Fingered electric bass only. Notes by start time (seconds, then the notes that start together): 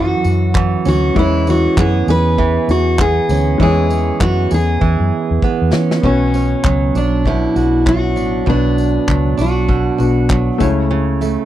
Already playing: F#2
0.25 F#2
0.86 D2
1.16 E2
1.77 F#2
2.07 E2
2.68 E2
3.29 D2
3.60 E2
4.21 F#2
4.52 E2
4.82 E2
5.00 F#2
5.31 E2
5.62 E2
5.74 E3
6.03 B1
6.65 C#2
6.95 B1
7.56 B1
8.17 A1
8.47 B1
9.08 C#2
9.38 B1
10.00 B1
10.61 C#2